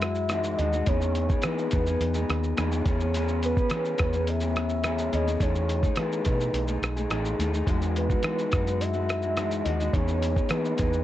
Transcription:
Already playing: fingered electric bass F#2, clean electric guitar G#3 F#4, soft synth lead E5
0.02 cross-stick, closed hi-hat, shaker
0.15 shaker
0.29 clean electric guitar E3 G#3 D#4 F#4, cross-stick, closed hi-hat, shaker
0.44 shaker
0.57 fingered electric bass D#2, clean electric guitar E3 G#3 D#4 F#4, soft synth lead D#5, closed hi-hat, shaker
0.73 clean electric guitar G#3 D#4 F#4, shaker
0.86 fingered electric bass E2, clean electric guitar E3 B3 D#4 G#4, soft synth lead C#5, kick, closed hi-hat, shaker
1.01 shaker
1.15 closed hi-hat, shaker
1.29 clean electric guitar B3 D#4 G#4, kick, shaker
1.42 clean electric guitar E3 B3 D#4, fingered electric bass E3, soft synth lead B4, cross-stick, closed hi-hat, shaker
1.46 clean electric guitar G#4
1.59 shaker
1.71 fingered electric bass E2, clean electric guitar E3 B3 D#4, soft synth lead B4, kick, closed hi-hat, shaker
1.75 clean electric guitar G#4
1.86 clean electric guitar B3 D#4 G#4, shaker
2.01 fingered electric bass E2, closed hi-hat, shaker
2.14 clean electric guitar B3 D#4 G#4, shaker
2.30 fingered electric bass D#2, cross-stick, closed hi-hat, shaker
2.44 shaker
2.57 fingered electric bass E2, clean electric guitar E3 B3 D#4 G#4, cross-stick, closed hi-hat, shaker
2.72 shaker
2.86 fingered electric bass E2, clean electric guitar E3 B3 C#4 G#4, kick, closed hi-hat, shaker
3.00 clean electric guitar B3 C#4 G#4, shaker
3.14 clean electric guitar E3 B3 C#4 G#4, closed hi-hat, shaker
3.28 shaker
3.43 soft synth lead B4, closed hi-hat, shaker
3.57 clean electric guitar B3 C#4 G#4, kick, shaker
3.70 fingered electric bass E3, clean electric guitar E3 B3 C#4, cross-stick, closed hi-hat, shaker
3.74 clean electric guitar G#4
3.85 shaker
3.98 fingered electric bass E2, clean electric guitar E3 B3 C#4, kick, cross-stick, closed hi-hat, shaker
4.02 clean electric guitar G#4
4.13 clean electric guitar B3 C#4 G#4, shaker
4.27 soft synth lead E5, closed hi-hat, shaker
4.40 clean electric guitar B3 C#4 G#4, shaker
4.56 cross-stick, closed hi-hat, shaker
4.69 shaker
4.84 clean electric guitar E3 B3 C#4 G#4, cross-stick, closed hi-hat, shaker
4.98 shaker
5.12 fingered electric bass D#2, clean electric guitar E3 B3 C#4 G#4, soft synth lead D#5, closed hi-hat, shaker
5.26 clean electric guitar B3 C#4 G#4, shaker
5.40 fingered electric bass E2, clean electric guitar E3 A3 D#4 G#4, soft synth lead C#5, kick, closed hi-hat, shaker
5.55 shaker
5.69 closed hi-hat, shaker
5.83 clean electric guitar A3 D#4 G#4, kick, shaker
5.96 clean electric guitar E3 A3 D#4 G#4, fingered electric bass E3, soft synth lead B4, cross-stick, closed hi-hat, shaker
6.12 shaker
6.25 fingered electric bass B2, clean electric guitar E3 A3 D#4 G#4, soft synth lead B4, kick, closed hi-hat, shaker
6.40 shaker
6.53 fingered electric bass B1, closed hi-hat, shaker
6.66 clean electric guitar A3 D#4 G#4, shaker
6.82 fingered electric bass B1, cross-stick, closed hi-hat, shaker
6.96 clean electric guitar A3 D#4 G#4, shaker
7.10 fingered electric bass A1, clean electric guitar E3 A3 D#4 G#4, cross-stick, closed hi-hat, shaker
7.25 shaker
7.38 fingered electric bass D#2, clean electric guitar E3 A3 D#4 G#4, closed hi-hat, shaker
7.52 clean electric guitar A3 D#4 G#4, shaker
7.66 fingered electric bass E2, clean electric guitar E3 G#3 D#4 F#4, kick, closed hi-hat, shaker
7.82 shaker
7.96 soft synth lead B4, closed hi-hat, shaker
8.09 clean electric guitar G#3 D#4 F#4, kick, shaker
8.23 clean electric guitar E3 G#3 D#4 F#4, fingered electric bass E3, cross-stick, closed hi-hat, shaker
8.39 shaker
8.51 fingered electric bass F#2, clean electric guitar E3 G#3 D#4 F#4, kick, cross-stick, closed hi-hat, shaker
8.65 clean electric guitar G#3 D#4 F#4, shaker
8.80 soft synth lead E5, closed hi-hat, shaker
8.93 clean electric guitar G#3 D#4 F#4, shaker
9.09 cross-stick, closed hi-hat, shaker
9.22 clean electric guitar G#3 D#4 F#4, shaker
9.37 clean electric guitar E3 G#3 D#4 F#4, cross-stick, closed hi-hat, shaker
9.51 shaker
9.64 fingered electric bass D#2, clean electric guitar E3 G#3 D#4, soft synth lead D#5, closed hi-hat, shaker
9.68 clean electric guitar F#4
9.79 clean electric guitar G#3 D#4 F#4, shaker
9.93 fingered electric bass E2, clean electric guitar E3 B3 D#4 G#4, soft synth lead C#5, kick, closed hi-hat, shaker
10.08 shaker
10.22 closed hi-hat, shaker
10.35 clean electric guitar B3 D#4 G#4, kick, shaker
10.49 clean electric guitar E3 B3 D#4 G#4, fingered electric bass E3, soft synth lead B4, cross-stick, closed hi-hat, shaker
10.65 shaker
10.77 fingered electric bass E2, clean electric guitar E3 B3 D#4 G#4, soft synth lead B4, kick, closed hi-hat, shaker
10.93 shaker

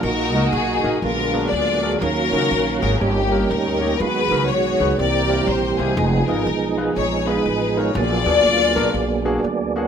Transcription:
0.03 upright bass A#1, grand piano A#2, tonewheel organ A#3 D#4 F#4, string section D#4 F#4 A#4
0.34 upright bass C#2, grand piano A#3 D#4 F#4 A#4 D#5
0.53 upright bass B1, string section D#4 G#4
0.83 upright bass A#1, grand piano A#3 D#4 F#4 A#4 D#5
1.02 upright bass A#1, grand piano A#2, tonewheel organ D3 F#3 G#3 A#3 B3, string section D4 F4 A#4
1.33 grand piano B3 D4 F#4 G#4 A#4
1.50 upright bass D2, string section F4 G#4 D5
1.82 grand piano B3 D4 F#4 G#4 A#4
2.00 upright bass D#2, tonewheel organ D#3 F#3 A#3 C#4 F5, grand piano D#3, string section C#4 F#4 A#4
2.33 upright bass C#2, grand piano C#4 D#4 F4 F#4 A#4
2.51 upright bass A#1
2.81 upright bass G#1, grand piano C#4 D#4 F4 F#4 G#4, string section A#4
2.99 upright bass G1, grand piano G2, tonewheel organ G3 A#3 C#4 D#4 G4, string section A#3 C#4 G4
3.31 grand piano A#3 C#4 D#4 G4 A#4
3.50 upright bass D2, string section C#4 D#4 A#4
3.81 grand piano A#3 C#4 D#4 G4 C#5
4.00 upright bass D#2, grand piano D#3, tonewheel organ D#3 F#3 G#3 B3 F4, string section F#4 G#4 B4
4.07 tonewheel organ F#4
4.30 upright bass C#2, grand piano B3 D#4 F#4 G#4 A#4
4.48 upright bass B1, string section F#4 G#4 C#5
4.80 upright bass C#2, grand piano B3 D#4 F#4 G#4 B4
4.98 upright bass C2, grand piano C3, tonewheel organ E3 G3 A#3 C4 G4, string section G4 A#4 D5
5.29 grand piano A#3 C4 E4 G4 A#4
5.47 upright bass A#1, string section C5
5.79 upright bass C2, grand piano A#3 C4 E4 G4 C5, string section B3 D#4 G#4
5.97 upright bass F1, tonewheel organ F3 G#3 B3 D#4 G#4
6.27 upright bass G#1, grand piano G#3 B3 D#4 F4 G#4, string section D#4 A#4
6.47 upright bass B1
6.77 grand piano G#3 B3 D#4 F4 B4
6.96 upright bass A#1, string section G#4 C#5
7.26 grand piano G#3 B3 D#4 F4 G#4, string section D#4 G#4 B4
7.46 upright bass A1
7.77 grand piano G#3 B3 D#4 F4 A#4, string section C#5
7.94 upright bass A#1, grand piano A#2, tonewheel organ F#3 A#3 B3 D4 G#4, string section F4 G#4 D5
8.26 upright bass D#2, grand piano A#3 B3 D4 F#4 G#4
8.45 upright bass D2
8.75 upright bass B1, grand piano A#3 B3 D4 F#4 A#4
8.94 upright bass A#1
9.25 grand piano A#3 B3 D4 F#4 G#4
9.44 upright bass D2, tonewheel organ D5
9.76 grand piano A#3 B3 D4 F#4 G#4, tonewheel organ C#4 F4 G#4 F#5

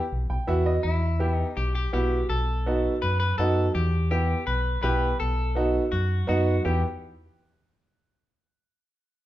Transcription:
0.12 fingered electric bass B1
0.30 fingered electric bass B1, upright piano G5
0.47 fingered electric bass E2, upright piano B3 E4 F#4 E5
0.66 upright piano D#5
0.83 fingered electric bass E2, clean electric guitar E4
1.19 upright piano B3 E4 G4
1.36 clean electric guitar D#4
1.57 fingered electric bass B1, clean electric guitar G4
1.75 clean electric guitar G4
1.93 fingered electric bass B1, upright piano B3 E4 F#4, clean electric guitar G4
2.29 fingered electric bass B1, clean electric guitar A4
2.66 upright piano B3 D#4 F#4
3.02 fingered electric bass F#2, clean electric guitar B4
3.20 clean electric guitar B4
3.38 fingered electric bass F#2, upright piano B3 D#4 F#4, clean electric guitar A4
3.75 fingered electric bass E2, clean electric guitar G4
4.11 upright piano B3 E4 G4, clean electric guitar G4
4.47 fingered electric bass B1, clean electric guitar B4
4.83 fingered electric bass B1, upright piano B3 E4 G4, clean electric guitar B4
5.20 fingered electric bass B1, clean electric guitar A4
5.55 upright piano B3 D#4 F#4
5.92 fingered electric bass F#2, clean electric guitar F#4
6.27 fingered electric bass F#2, upright piano B3 D#4 F#4, clean electric guitar F#4
6.65 fingered electric bass E2, upright piano B3 E4 G4, clean electric guitar G4

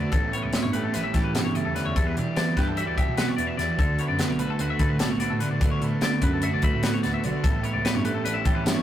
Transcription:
Already playing: overdriven electric guitar D3 A3 D4 F#4, clean electric guitar D3 A3 B3 F#4 B4 D5
0.11 tine electric piano A1, overdriven electric guitar A2 E3 G3 C#4 E4, clean electric guitar A2 A4, kick, closed hi-hat
0.33 clean electric guitar B3 C#5, closed hi-hat
0.43 tine electric piano C#2, clean electric guitar D5
0.52 overdriven electric guitar A2 E3 G3 C#4 E4, clean electric guitar B4, snare, closed hi-hat
0.63 tine electric piano G2, clean electric guitar C#5
0.73 overdriven electric guitar G3 C#4 E4, clean electric guitar A3 G4 B4, closed hi-hat
0.83 clean electric guitar A4
0.93 tine electric piano A1, overdriven electric guitar E3 G3 C#4 E4, clean electric guitar E4 B4, snare, closed hi-hat
1.04 clean electric guitar E5
1.14 tine electric piano A2, clean electric guitar E3 G4 A4, overdriven electric guitar G3 C#4 E4, kick, snare, closed hi-hat
1.24 clean electric guitar B4
1.34 tine electric piano G2, clean electric guitar B2 A4, snare, closed hi-hat
1.45 clean electric guitar C#5
1.55 clean electric guitar C#3 D5, overdriven electric guitar G3 C#4 E4, closed hi-hat
1.65 tine electric piano E2, clean electric guitar A4
1.75 overdriven electric guitar A2 E3 G3 C#4 E4, clean electric guitar D3 B4, snare, closed hi-hat
1.85 tine electric piano E2, clean electric guitar C#5
1.95 tine electric piano E2, overdriven electric guitar E3 G3 B3 E4, clean electric guitar E3 A4, kick, closed hi-hat
2.06 clean electric guitar B4
2.16 tine electric piano B2, clean electric guitar D4 G4, closed hi-hat
2.36 overdriven electric guitar E3 G3 B3 E4, tine electric piano E3, clean electric guitar D5, snare, closed hi-hat
2.56 tine electric piano G2, clean electric guitar G3 G4 B4, overdriven electric guitar G3 B3 E4, kick, snare, closed hi-hat
2.67 clean electric guitar A4
2.76 overdriven electric guitar E3 G3 B3 E4, clean electric guitar F#4 E5, closed hi-hat
2.87 tine electric piano D2, clean electric guitar D5
2.96 clean electric guitar B2 G4 E5, overdriven electric guitar G3 B3 E4, kick, closed hi-hat
3.07 tine electric piano B2
3.17 clean electric guitar F#4 B4, snare, closed hi-hat
3.28 clean electric guitar C#5
3.36 tine electric piano E2, overdriven electric guitar G3 B3 E4, clean electric guitar D4 D5, closed hi-hat
3.47 clean electric guitar E5
3.57 tine electric piano E2, overdriven electric guitar E3 G3 B3 E4, clean electric guitar E3 D5, snare, closed hi-hat
3.78 tine electric piano D2, overdriven electric guitar D3 A3 D4 F#4, clean electric guitar D3 A4, kick, closed hi-hat
3.99 clean electric guitar B3 C#5, closed hi-hat
4.08 tine electric piano F#2, clean electric guitar D5
4.19 overdriven electric guitar D3 A3 D4 F#4, clean electric guitar B4, snare, closed hi-hat
4.29 tine electric piano B1, clean electric guitar C#5
4.39 clean electric guitar A3 B4, overdriven electric guitar A3 D4 F#4, closed hi-hat
4.50 clean electric guitar A4
4.59 tine electric piano D2, overdriven electric guitar D3 A3 D4 F#4, clean electric guitar F#4 B4, closed hi-hat
4.70 clean electric guitar E5
4.79 clean electric guitar A2 A4 B4, tine electric piano D3, overdriven electric guitar D4 F#4, kick, closed hi-hat
4.83 overdriven electric guitar A3
4.89 clean electric guitar B4
4.99 tine electric piano B1, clean electric guitar F#4 A4, snare, closed hi-hat
5.10 clean electric guitar C#5
5.20 overdriven electric guitar A3 D4 F#4, clean electric guitar B3 D5, closed hi-hat
5.30 tine electric piano A2, clean electric guitar A4
5.40 overdriven electric guitar D3 A3 D4 F#4, clean electric guitar D3 B4, closed hi-hat
5.50 tine electric piano A2, clean electric guitar D5
5.61 overdriven electric guitar D3 A3 D4 F#4, clean electric guitar D3 B4, kick, closed hi-hat
5.71 clean electric guitar C#5
5.81 tine electric piano A2, clean electric guitar B3 A4, closed hi-hat
6.01 tine electric piano D3, overdriven electric guitar D3 A3 D4 F#4, clean electric guitar D5, snare, closed hi-hat
6.22 tine electric piano F#2, clean electric guitar A3 B4, overdriven electric guitar A3 D4 F#4, kick, closed hi-hat
6.33 clean electric guitar A4
6.42 overdriven electric guitar D3 A3 D4 F#4, clean electric guitar F#4 E5, closed hi-hat
6.53 tine electric piano B1, clean electric guitar D5
6.62 clean electric guitar A2 B4 E5, overdriven electric guitar A3 D4 F#4, kick, closed hi-hat
6.73 tine electric piano A2
6.83 clean electric guitar F#4 B4, snare, closed hi-hat
6.94 clean electric guitar C#5
7.03 tine electric piano D2, overdriven electric guitar A3 D4 F#4, clean electric guitar B3 D5, snare, closed hi-hat
7.14 clean electric guitar E5
7.24 tine electric piano B1, overdriven electric guitar D3 A3 D4 F#4, clean electric guitar D3 D5, closed hi-hat
7.44 tine electric piano A1, clean electric guitar A2 A4, overdriven electric guitar A2 E3 G3 C#4 E4, kick, closed hi-hat
7.63 clean electric guitar B3 C#5, closed hi-hat
7.73 tine electric piano C#2, clean electric guitar D5
7.85 overdriven electric guitar A2 E3 G3 C#4 E4, clean electric guitar B4, snare, closed hi-hat
7.95 tine electric piano G2, clean electric guitar C#5
8.04 overdriven electric guitar G3 C#4 E4, clean electric guitar A3 G4 B4, closed hi-hat
8.14 clean electric guitar A4
8.25 tine electric piano A1, overdriven electric guitar E3 G3 C#4 E4, clean electric guitar D4 B4, closed hi-hat
8.34 clean electric guitar E4 E5
8.45 tine electric piano A2, clean electric guitar E3 G4 A4, overdriven electric guitar G3 C#4 E4, kick, closed hi-hat
8.54 clean electric guitar B4
8.64 tine electric piano G2, clean electric guitar E4 A4, snare, closed hi-hat
8.74 clean electric guitar C#5

